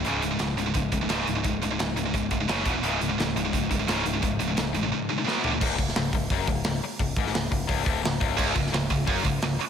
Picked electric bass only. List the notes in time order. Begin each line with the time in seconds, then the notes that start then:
0.05 C#1
0.23 C#1
0.40 C#1
0.57 C#1
0.75 C#1
0.92 C#1
1.10 C#1
1.28 C#1
1.45 C#1
1.63 C#1
1.80 C#1
1.96 C#1
2.14 C#1
2.31 C#1
2.49 F#1
2.66 E1
2.83 C#1
3.01 C#1
3.19 C#1
3.35 C#1
3.54 C#1
3.71 C#1
3.88 C#1
4.05 C#1
4.23 C#1
4.40 C#1
4.57 C#1
4.76 A1
5.62 C#1
5.79 C#1
5.97 C#1
6.13 C#1
6.31 F#1
6.48 C#1
6.66 C#1
6.83 muted picked electric bass stroke
6.99 C#1
7.17 G#1
7.34 C#1
7.52 C#1
7.69 C#1
7.86 D1
8.04 C#1
8.22 C#1
8.38 C#1
8.56 C#1
8.73 C#1
8.90 C#1
9.08 F#1
9.25 C#1
9.43 C#1
9.60 muted picked electric bass stroke